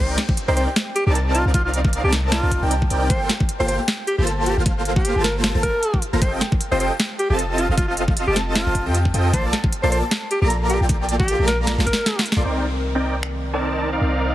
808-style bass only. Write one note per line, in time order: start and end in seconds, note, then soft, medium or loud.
0.00 0.17 C2 medium
0.48 0.67 C2 medium
1.07 1.43 C2 loud
1.46 2.02 C2 loud
2.04 2.41 C2 medium
2.43 2.60 C2 medium
2.62 2.89 C2 loud
2.91 3.11 C2 loud
3.10 3.29 G1 medium
3.60 3.78 G1 loud
4.18 4.55 G1 loud
4.57 5.13 G1 medium
5.16 5.52 G1 loud
5.55 5.69 G1 loud
6.13 6.23 G1 loud
6.22 6.40 F1 medium
6.71 6.90 F1 loud
7.30 7.67 F1 loud
7.69 8.25 F1 loud
8.27 8.64 F1 loud
8.66 8.87 F1 loud
8.86 9.12 F2 loud
9.14 9.32 F2 loud
9.33 9.52 A#1 medium
9.83 10.02 A#1 loud
10.42 10.78 A#1 loud
10.81 11.37 A#1 loud
11.39 11.76 A#1 loud
11.78 11.93 A#1 loud
12.36 12.43 A#1 medium
12.45 13.99 C2 medium
14.01 14.35 C2 medium